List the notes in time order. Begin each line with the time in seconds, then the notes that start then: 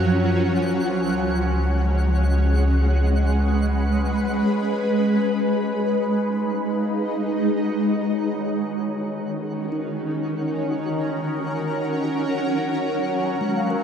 Already playing: F#2 F3 F#3 C#4 A#4 F#5
0.83 C#2 G#3
2.21 B4
4.47 F#4
5.33 D#4
6.30 D#5
6.75 F5
7.23 D#5
8.09 D#3
8.13 C#5
8.45 C#4
9.72 D#4 A#4
11.76 F#3 F#5
13.41 G#3
13.56 F5
13.70 A#4